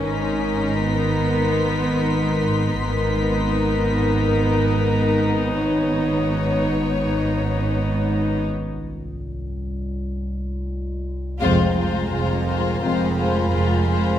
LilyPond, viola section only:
\new Staff \with { instrumentName = "Viola section" } { \clef bass \time 4/4 \key gis \minor \tempo 4 = 85 << { dis'1 | dis'1~ | dis'1 | r1 |
\key f \minor r1 | } \\ { cis'4 b2. | b1~ | b1 | r1 |
aes8 aes8 aes8 aes8 aes8 aes8 aes8 aes8 | } >> }